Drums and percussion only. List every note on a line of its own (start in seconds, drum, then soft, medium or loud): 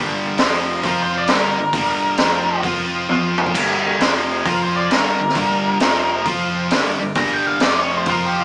0.38 snare loud
0.38 open hi-hat soft
0.84 kick medium
0.84 open hi-hat soft
1.28 snare loud
1.28 open hi-hat soft
1.73 kick loud
1.73 open hi-hat medium
2.17 snare loud
2.17 open hi-hat soft
2.63 kick medium
2.63 open hi-hat soft
3.09 high tom medium
3.38 mid tom medium
3.46 kick medium
3.55 kick medium
3.55 open hi-hat soft
3.55 crash medium
4.00 snare loud
4.00 open hi-hat soft
4.46 kick medium
4.46 open hi-hat soft
4.91 snare loud
4.91 open hi-hat soft
5.29 snare soft
5.35 kick loud
5.35 open hi-hat soft
5.80 snare loud
5.80 open hi-hat soft
6.26 kick medium
6.26 open hi-hat soft
6.71 snare loud
6.71 open hi-hat soft
7.15 kick loud
7.15 open hi-hat medium
7.60 snare loud
7.60 open hi-hat soft
8.06 kick medium
8.06 open hi-hat soft